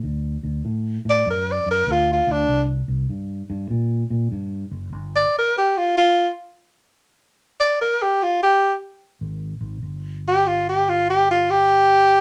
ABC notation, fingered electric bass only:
X:1
M:4/4
L:1/8
Q:"Swing" 1/4=98
K:Flyd
V:1 name="Fingered electric bass" clef=bass
D,, D,, A,, A,, ^F,, F,, D,, D,, | C,, C,, G,, G,, _B,, B,, G,, ^F,,, | G,,, z6 z | z6 _A,,, A,,, |
G,,,8 |]